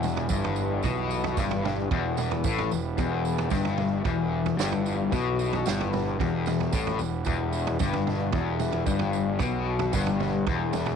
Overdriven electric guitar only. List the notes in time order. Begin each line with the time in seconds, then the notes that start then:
Already playing: E2
0.29 G2
0.84 B2
1.38 G2
1.91 E2
2.44 A2
2.70 E2
2.97 E2
3.51 G2
4.05 E2
4.58 G2
5.12 B2
5.66 G2
6.20 E2
6.74 A2
7.00 E2
7.26 E2
7.80 G2
8.33 E2
8.86 G2
9.40 B2
9.94 G2
10.47 E2